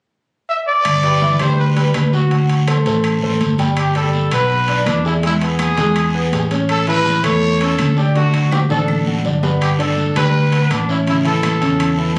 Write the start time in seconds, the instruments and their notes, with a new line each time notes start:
0.49 trumpet E5
0.68 trumpet D5
0.85 fingered electric bass G1, high conga, high timbale, long guiro, claves
1.03 grand piano G3 G4 B4, high conga, high timbale
1.22 grand piano E3 E4 E5, high conga, short guiro
1.39 fingered electric bass D2, grand piano G3 G4 B4, trumpet C5, high conga, high timbale, short guiro, claves
1.58 trumpet B4, high conga, long guiro
1.76 grand piano G3 G4 B4, trumpet B4, high conga, high timbale
1.94 fingered electric bass D2, high conga, high timbale, low timbale, short guiro, claves
2.13 grand piano F#3 F#4 F#5, trumpet F#4, high conga, short guiro
2.31 grand piano F#3 F#4 F#5, high conga, high timbale, long guiro
2.49 high conga, high timbale
2.68 grand piano A3 A4 C5, high conga, high timbale, short guiro, claves
2.86 fingered electric bass A1, grand piano A3 A4 C5, high conga, high timbale, short guiro
3.04 high conga, high timbale, long guiro, claves
3.22 fingered electric bass A1, grand piano A3 A4 C5, high conga
3.40 fingered electric bass G1, high conga, high timbale, short guiro
3.58 grand piano G3 G4 G5, high conga, high timbale, short guiro
3.77 trumpet G4, high conga, high timbale, long guiro, claves
3.95 grand piano G3 G4, trumpet A4, high conga, high timbale
4.13 high conga, short guiro
4.31 fingered electric bass B1, grand piano B3 B4, trumpet B4, high conga, high timbale, short guiro, claves
4.50 high conga, long guiro
4.68 grand piano D4 D5, high conga, high timbale
4.86 fingered electric bass E2, trumpet D4, high conga, high timbale, short guiro, claves
5.05 trumpet E4, grand piano G#4 G#5, short guiro
5.23 grand piano G#3 G#4, trumpet E4, high conga, high timbale, long guiro
5.41 grand piano B3 B4, trumpet G#4, high conga, high timbale
5.59 high conga, high timbale, short guiro, claves
5.77 fingered electric bass E2, grand piano G#3 G#4, high conga, high timbale, short guiro
5.96 high conga, high timbale, long guiro, claves
6.14 grand piano B3 B4, high conga
6.32 fingered electric bass A1, grand piano G#4 G#5, high conga, high timbale, low timbale, short guiro
6.51 grand piano C#4 C#5, high conga, high timbale, short guiro
6.69 trumpet A4, high conga, high timbale, long guiro, claves
6.87 grand piano E3 E4, trumpet B4, high conga, high timbale
7.06 high conga, short guiro
7.24 fingered electric bass E2, grand piano A3 A4, trumpet C#5, high timbale, short guiro, claves
7.43 high conga, long guiro
7.61 grand piano C#4 C#5, trumpet A4, high conga, high timbale
7.78 fingered electric bass D2, high conga, high timbale, short guiro, claves
7.97 grand piano D4 D5, trumpet G4, short guiro
8.15 grand piano D3 D4, trumpet F#4, high timbale, long guiro
8.33 grand piano F#3 F#4, high conga, high timbale
8.52 trumpet G4, high conga, high timbale, short guiro, claves
8.69 fingered electric bass A1, grand piano D3 D4, trumpet A4, high conga, high timbale, short guiro
8.88 high conga, long guiro, claves
9.06 grand piano F#3 F#4, high conga
9.25 fingered electric bass G1, grand piano D4 D5, low conga, short guiro
9.43 grand piano B3 B4, low conga, low timbale, short guiro
9.61 trumpet G4, high conga, high timbale, long guiro, claves
9.79 grand piano D3 D4, trumpet A4, high conga, high timbale
9.97 high conga, short guiro
10.16 fingered electric bass D2, grand piano G3 G4, trumpet B4, high conga, high timbale, short guiro, claves
10.34 high conga, long guiro
10.52 grand piano B3 B4, high conga, high timbale
10.70 fingered electric bass A1, trumpet D4, high conga, high timbale, short guiro, claves
10.89 grand piano C#4 C#5, trumpet E4, short guiro
11.07 grand piano C#3 C#4, trumpet E4, high conga, high timbale, long guiro
11.25 grand piano E3 E4, trumpet A4, high conga, high timbale
11.43 high conga, high timbale, short guiro, claves
11.61 fingered electric bass E2, grand piano C#3 C#4, high conga, high timbale, short guiro
11.80 high conga, high timbale, long guiro, claves
11.97 grand piano E3 E4, high conga